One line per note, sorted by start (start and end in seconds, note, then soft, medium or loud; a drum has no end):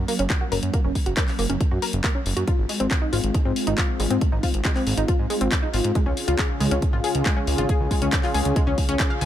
0.00 2.44 F#3 medium
0.00 2.44 A#3 medium
0.00 2.44 C#4 medium
0.08 0.12 A#3 medium
0.08 open hi-hat loud
0.19 0.27 F#1 medium
0.19 0.25 C#4 medium
0.19 closed hi-hat medium
0.30 kick loud
0.30 clap loud
0.30 closed hi-hat medium
0.41 0.47 F#4 medium
0.52 0.59 F#1 loud
0.52 0.56 A#4 medium
0.52 open hi-hat loud
0.63 0.70 F#2 medium
0.63 closed hi-hat medium
0.73 0.77 A#3 medium
0.73 kick loud
0.73 closed hi-hat medium
0.84 0.92 F#1 medium
0.84 0.90 C#4 medium
0.95 kick medium
0.95 open hi-hat loud
1.06 1.14 F#1 medium
1.06 1.12 F#4 medium
1.06 closed hi-hat medium
1.17 1.21 A#4 medium
1.17 kick loud
1.17 clap loud
1.17 closed hi-hat medium
1.28 clap soft
1.28 open hi-hat medium
1.39 1.46 F#1 medium
1.39 1.43 A#3 medium
1.39 open hi-hat loud
1.50 1.57 F#1 medium
1.50 1.55 C#4 medium
1.50 closed hi-hat medium
1.61 kick loud
1.61 closed hi-hat medium
1.71 1.79 F#2 medium
1.71 1.77 F#4 medium
1.82 1.86 A#4 medium
1.82 open hi-hat loud
1.93 2.01 F#1 medium
1.93 closed hi-hat medium
2.04 2.08 A#3 medium
2.04 kick loud
2.04 clap loud
2.04 closed hi-hat medium
2.15 2.21 C#4 medium
2.26 2.33 F#1 loud
2.26 open hi-hat loud
2.37 2.44 F#2 medium
2.37 2.42 F#4 medium
2.37 closed hi-hat medium
2.47 5.92 G#3 medium
2.47 5.92 C4 medium
2.47 2.51 F4 medium
2.47 9.25 F4 medium
2.47 kick loud
2.47 closed hi-hat medium
2.58 2.66 G#1 medium
2.69 2.73 G#3 medium
2.69 open hi-hat loud
2.80 2.88 G#1 medium
2.80 2.86 C4 medium
2.80 closed hi-hat medium
2.91 kick loud
2.91 clap loud
2.91 closed hi-hat medium
3.02 3.08 D#4 medium
3.13 3.20 G#1 loud
3.13 3.17 F4 medium
3.13 open hi-hat loud
3.24 3.31 G#1 medium
3.24 closed hi-hat medium
3.34 3.38 G#3 medium
3.34 kick loud
3.34 closed hi-hat medium
3.45 3.53 G#2 medium
3.45 3.51 C4 medium
3.56 open hi-hat loud
3.67 3.74 G#1 medium
3.67 3.73 D#4 medium
3.67 closed hi-hat medium
3.78 3.82 F4 medium
3.78 kick loud
3.78 clap loud
3.78 closed hi-hat medium
4.00 4.07 G#1 loud
4.00 4.04 G#3 medium
4.00 open hi-hat loud
4.10 4.18 G#2 medium
4.10 4.16 C4 medium
4.10 closed hi-hat medium
4.21 kick loud
4.21 closed hi-hat medium
4.32 4.40 G#1 medium
4.32 4.38 D#4 medium
4.43 4.47 F4 medium
4.43 kick medium
4.43 open hi-hat loud
4.54 4.61 G#1 medium
4.54 closed hi-hat medium
4.65 4.69 G#3 medium
4.65 kick loud
4.65 clap loud
4.65 closed hi-hat medium
4.76 4.82 C4 medium
4.76 clap soft
4.76 open hi-hat medium
4.87 4.94 G#1 medium
4.87 open hi-hat loud
4.97 5.05 G#1 medium
4.97 5.03 D#4 medium
4.97 closed hi-hat medium
5.08 5.12 F4 medium
5.08 kick loud
5.08 closed hi-hat medium
5.19 5.27 G#2 medium
5.30 5.34 G#3 medium
5.30 open hi-hat loud
5.41 5.48 G#1 medium
5.41 5.47 C4 medium
5.41 closed hi-hat medium
5.52 kick loud
5.52 clap loud
5.52 closed hi-hat medium
5.63 5.69 D#4 medium
5.74 5.81 G#1 loud
5.74 5.77 F4 medium
5.74 open hi-hat loud
5.84 5.92 G#2 medium
5.84 closed hi-hat medium
5.95 9.25 C#3 medium
5.95 5.99 G#3 medium
5.95 9.25 C#4 medium
5.95 9.25 G#4 medium
5.95 kick loud
5.95 closed hi-hat medium
6.06 6.14 C#2 medium
6.06 6.12 C#4 medium
6.17 open hi-hat loud
6.28 6.35 C#2 medium
6.28 6.34 F4 medium
6.28 closed hi-hat medium
6.39 6.43 G#4 medium
6.39 kick loud
6.39 clap loud
6.39 closed hi-hat medium
6.60 6.68 C#2 medium
6.60 6.64 G#3 medium
6.60 open hi-hat loud
6.71 6.79 C#2 medium
6.71 6.77 C#4 medium
6.71 closed hi-hat medium
6.82 kick loud
6.82 closed hi-hat medium
6.93 7.01 G#1 medium
6.93 6.99 F4 medium
7.04 7.08 G#4 medium
7.04 open hi-hat loud
7.15 7.22 C#2 medium
7.15 closed hi-hat medium
7.26 7.30 G#3 medium
7.26 kick loud
7.26 clap loud
7.26 closed hi-hat medium
7.37 7.42 C#4 medium
7.47 7.55 C#2 loud
7.47 open hi-hat loud
7.58 7.66 G#1 medium
7.58 7.64 F4 medium
7.58 closed hi-hat medium
7.69 7.73 G#4 medium
7.69 kick loud
7.69 closed hi-hat medium
7.80 7.88 C#2 medium
7.91 7.95 G#3 medium
7.91 kick medium
7.91 open hi-hat loud
8.02 8.09 C#2 medium
8.02 8.08 C#4 medium
8.02 closed hi-hat medium
8.13 kick loud
8.13 clap loud
8.13 closed hi-hat medium
8.24 8.29 F4 medium
8.24 clap soft
8.24 open hi-hat medium
8.34 8.42 C#2 medium
8.34 8.38 G#4 medium
8.34 open hi-hat loud
8.45 8.53 C#2 medium
8.45 closed hi-hat medium
8.56 8.60 G#3 medium
8.56 kick loud
8.56 closed hi-hat medium
8.67 8.74 C#2 medium
8.67 8.73 C#4 medium
8.78 kick medium
8.78 open hi-hat loud
8.89 8.96 C#2 medium
8.89 8.95 C#4 loud
8.89 closed hi-hat medium
9.00 9.02 G#4 medium
9.00 kick loud
9.00 clap loud
9.00 closed hi-hat medium
9.10 9.13 F5 medium
9.21 9.25 C#2 loud
9.21 9.25 G#5 medium
9.21 open hi-hat loud